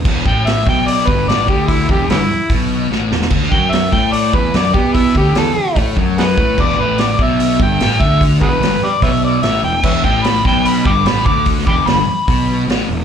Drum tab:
CC |x---------------|----------------|x---------------|----------------|
HH |----o---o---o---|o---o---o-------|----o---o---o---|o---o---o---o---|
SD |----o-o-----o---|----o-------o-oo|-o--o-o-----o---|----o-------o---|
BD |o-o---o---o---o-|o-o-----o-------|o-o---o---o---o-|o-o-----o-o---o-|

CC |x---------------|----------------|x---------------|----------------|
HH |----o---o---o---|o---o---o---o---|----o---o---o---|o---o---o---o---|
SD |-o--o-------o---|----o-------o---|----o-o-----o---|-o--o-------o---|
BD |o-----o---o---o-|o-o-----o-------|o-o---o---o---o-|o-o-----o-------|